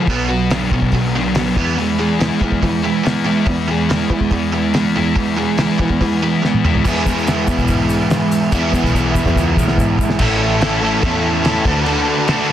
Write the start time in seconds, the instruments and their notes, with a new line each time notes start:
0.07 double bass B1, overdriven electric guitar B2 F#3 B3, kick, open hi-hat
0.28 overdriven electric guitar B2 F#3 F#4
0.50 overdriven electric guitar B2 F#3 D4, snare, open hi-hat
0.71 double bass B2, overdriven electric guitar B2 F#3 B3, kick
0.82 double bass B1, kick
0.92 double bass B1, overdriven electric guitar B2 F#3, kick, open hi-hat
1.15 overdriven electric guitar B2 F#3 D4
1.35 overdriven electric guitar B2 F#3 B3, snare, open hi-hat
1.56 double bass E2, overdriven electric guitar E3 G#3 B3, kick
1.78 overdriven electric guitar E3 G#3, open hi-hat
1.99 overdriven electric guitar E3 G#3 G#4
2.19 overdriven electric guitar E3 G#3 E4, snare, open hi-hat
2.39 double bass E3, overdriven electric guitar E3 G#3 B3, kick
2.52 double bass E2, kick
2.62 overdriven electric guitar E3 G#3, double bass E3, kick, open hi-hat
2.83 overdriven electric guitar E3 G#3 E4
3.03 overdriven electric guitar E3 G#3 B3, snare, open hi-hat
3.24 overdriven electric guitar E3 G#3 E4
3.46 double bass E2, overdriven electric guitar E3 G#3, kick, open hi-hat
3.68 overdriven electric guitar E3 G#3 G#4
3.89 overdriven electric guitar E3 G#3 E4, snare, open hi-hat
4.10 double bass E3, overdriven electric guitar E3 G#3 B3, kick
4.21 double bass E2, kick
4.31 double bass E2, overdriven electric guitar E3 G#3, kick, open hi-hat
4.52 overdriven electric guitar E3 G#3 E4
4.74 overdriven electric guitar E3 G#3 B3, snare, open hi-hat
4.96 double bass E2, overdriven electric guitar E3 G#3 E4
5.16 overdriven electric guitar E3 G#3, kick, open hi-hat
5.36 overdriven electric guitar E3 G#3 G#4
5.58 overdriven electric guitar E3 G#3 E4, snare, open hi-hat
5.78 overdriven electric guitar E3 G#3 B3, double bass E3, kick
5.90 double bass E2, kick
6.01 double bass E3, overdriven electric guitar E3 G#3, kick, open hi-hat
6.22 overdriven electric guitar E3 G#3 E4
6.42 overdriven electric guitar E3 G#3 B3, snare
6.54 high tom
6.64 overdriven electric guitar E3 G#3 E4, mid tom
6.75 floor tom
6.84 double bass E2, overdriven electric guitar E3 G#3 B3 E4 G#4, kick, crash, shaker
7.06 double bass E2, kick, open hi-hat, shaker
7.18 shaker
7.27 snare, open hi-hat, shaker
7.47 double bass E2, kick, open hi-hat, shaker
7.58 double bass B1, kick, shaker
7.68 double bass G#2, kick, open hi-hat, shaker
7.90 open hi-hat, shaker
8.10 snare, open hi-hat, shaker
8.31 open hi-hat, shaker
8.52 double bass E2, overdriven electric guitar E3 G#3 B3 E4 G#4, kick, shaker
8.73 double bass E2, kick, shaker
8.84 double bass B1, kick, shaker
8.94 double bass E2, kick, shaker
9.15 double bass E2, kick, shaker
9.25 double bass E2, kick, shaker
9.36 double bass C#2, kick, shaker
9.57 double bass B1, kick, shaker
9.68 snare
9.78 double bass G#2, kick, shaker
9.99 double bass B1, kick, shaker
10.10 snare
10.18 double bass A1, overdriven electric guitar A2 E3 A3 C#4, transistor combo organ A4 E5 G#5 C#6, kick, crash
10.22 overdriven electric guitar E4 A4
10.61 overdriven electric guitar A2 E3 A3 C#4 E4 A4, snare, crash
10.81 overdriven electric guitar A2 E3 A3 C#4 E4 A4
11.02 double bass E2, overdriven electric guitar A2 E3 A3 C#4 E4 A4, kick, crash
11.43 overdriven electric guitar A2 E3 A3 C#4 E4 A4, snare, crash
11.63 double bass D2, overdriven electric guitar D3 A3 D4 F#4 A4, transistor combo organ B4 F#5 A5 D6, kick
11.85 overdriven electric guitar D3 A3 D4 F#4 A4, crash
12.28 overdriven electric guitar D3 A3 D4 F#4 A4, snare, crash
12.49 overdriven electric guitar D3